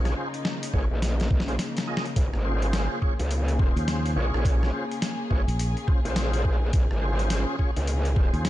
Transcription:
Already playing: A#1 C#3 A#3 C#4 D#4 F4 G#4 C#5
0.05 cross-stick, snare, closed hi-hat
0.16 C#4 F4 G#4 C5
0.34 closed hi-hat
0.45 snare
0.63 closed hi-hat
0.73 G#1 C#4 F4 G#4 C#5, kick
0.91 A#1
1.02 snare, closed hi-hat
1.20 snare, closed hi-hat
1.31 A#1, kick
1.40 snare
1.48 C#4 F4 G#4 C5, closed hi-hat
1.59 snare, closed hi-hat
1.77 snare, closed hi-hat
1.87 C#4 F4 G#4 D#5
1.97 snare
2.06 closed hi-hat
2.16 A#1 G#4, kick, closed hi-hat
2.34 G#1, cross-stick
2.45 C#4 F4 G#4 C5
2.62 closed hi-hat
2.73 snare, closed hi-hat
3.02 C#4 F4 G#4 C#5, kick
3.19 C#2, closed hi-hat
3.31 closed hi-hat
3.48 closed hi-hat
3.59 C#4 F4 G#4 C5, kick
3.76 D#2, closed hi-hat
3.88 snare, closed hi-hat
4.06 closed hi-hat
4.16 A#1 C#4 F4 G#4 C#5
4.34 A#1, cross-stick
4.45 kick, closed hi-hat
4.63 cross-stick, snare
4.73 C#4 F4 G#4 C5
4.91 closed hi-hat
5.02 snare, closed hi-hat
5.30 G#1 C#4 F4 G#4 C#5, kick
5.48 A#1, closed hi-hat
5.59 closed hi-hat
5.77 closed hi-hat
5.87 C#4 F4 G#4 C5, kick
6.05 A#1 C#4 F4 G#4 C5, closed hi-hat
6.16 snare, closed hi-hat
6.33 closed hi-hat
6.44 C#4 F4 G#4 C5, kick
6.73 A#1, kick, closed hi-hat
6.91 G#1, cross-stick
7.01 C#4 F4 G#4 C5
7.19 closed hi-hat
7.30 snare, closed hi-hat
7.59 C#4 F4 G#4 C#5, kick
7.76 C#2, closed hi-hat
7.87 closed hi-hat
8.05 closed hi-hat
8.16 C#4 F4 G#4 C5, kick
8.33 D#2, closed hi-hat
8.45 snare, closed hi-hat

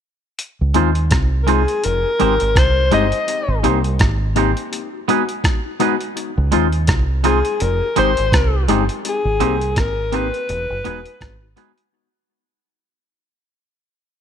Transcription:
0.39 closed hi-hat
0.61 C#2
0.74 D#2 G#3 C4 D#4 F4 C5, closed hi-hat
0.95 closed hi-hat
1.11 C2, kick, cross-stick, closed hi-hat
1.43 G#3 A#4
1.47 G#3 C4 D#4 F4 G#4 C5, closed hi-hat
1.68 closed hi-hat
1.84 F1 A#4, closed hi-hat
2.04 D#4 G4
2.20 G#1 G#3 C4 D#4 G4 C5, closed hi-hat
2.40 G#1, closed hi-hat
2.55 C2 C5, kick, cross-stick, closed hi-hat
2.77 D#4 G4
2.91 G1 G#3 C4 D#4 G4 C5 D#5, closed hi-hat
3.12 closed hi-hat
3.28 closed hi-hat
3.48 G#1
3.63 C2 G#3 A#3 C4 D#4 G4 C5, closed hi-hat
3.84 closed hi-hat
3.99 G#1, kick, cross-stick, closed hi-hat
4.35 G#3 A#3 C4 D#4 G4 C5, closed hi-hat
4.57 closed hi-hat
4.73 closed hi-hat
4.93 D#4 F#4
5.08 G#3 B3 D#4 F#4 G#4 B4, closed hi-hat
5.29 closed hi-hat
5.44 kick, cross-stick, closed hi-hat
5.65 D#4 F#4
5.80 G#3 B3 D#4 F#4 G#4 B4, closed hi-hat
6.01 closed hi-hat
6.17 closed hi-hat
6.38 C#2
6.52 D#2 G#3 C4 D#4 F4 C5, closed hi-hat
6.72 closed hi-hat
6.87 C2, kick, cross-stick, closed hi-hat
7.24 G#3 C4 D#4 F4 G#4 C5, closed hi-hat
7.45 closed hi-hat
7.60 F1 A#4, closed hi-hat
7.82 D#4 G4
7.96 G#1 G#3 C4 D#4 G4 C5, closed hi-hat
8.17 G#1, closed hi-hat
8.32 C2, kick, cross-stick, closed hi-hat
8.53 D#4 G4
8.68 G1 G#3 C4 D#4 G4 C5, closed hi-hat
8.89 closed hi-hat
9.05 G#4, closed hi-hat
9.25 G#1
9.40 C2 A#3 C4 D#4 G4 C5, closed hi-hat
9.61 closed hi-hat
9.76 G#1 A#4, kick, cross-stick, closed hi-hat
10.12 A#3 C4 D#4 G4 B4 C5, closed hi-hat
10.34 closed hi-hat
10.49 E1, closed hi-hat
10.70 F#1 D#4 F#4
10.84 E1 G#3 B3 D#4 F#4 G#4 B4, closed hi-hat
11.06 closed hi-hat
11.21 G#1, kick, cross-stick, closed hi-hat
11.42 D#4 F#4
11.56 G#3 B3 D#4 F#4 G#4 B4, closed hi-hat
11.78 closed hi-hat

